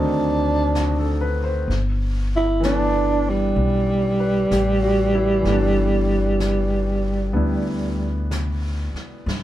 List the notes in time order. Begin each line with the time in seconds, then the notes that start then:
Already playing: D2 D#3 F#3 A3 C4 D4
0.75 F#4, brush sweep, snare, hi-hat pedal
0.99 A4
1.21 B4
1.44 C5
1.68 G1, brush sweep, snare
2.36 E4
2.60 E3 A3 B3, brush sweep, snare, hi-hat pedal
2.64 D4
3.29 G3
3.56 B1, brush sweep
4.20 B4
4.51 A1 G4, brush sweep, snare, hi-hat pedal
4.82 F#4
5.15 E4
5.41 G1 E3 A3, brush sweep, snare
5.49 B3 D4
6.40 brush sweep, snare, hi-hat pedal
7.33 D2 B3 D4 E4, brush sweep
8.31 brush sweep, snare, hi-hat pedal
8.93 muted upright bass stroke, snare
9.26 G2, brush sweep, snare